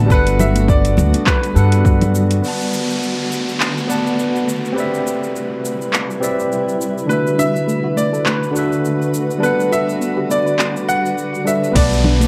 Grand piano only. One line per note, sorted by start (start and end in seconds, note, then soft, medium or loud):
0.11 0.41 B4 loud
0.40 0.70 E5 medium
0.69 1.29 D5 medium
1.27 2.10 B4 medium
7.09 7.36 B4 medium
7.39 7.93 E5 loud
7.97 8.24 D5 medium
8.26 9.10 B4 medium
9.43 9.73 B4 medium
9.72 10.32 E5 loud
10.31 11.43 D5 medium
10.89 11.48 F#5 loud
11.47 11.77 E5 medium
11.76 12.28 D5 loud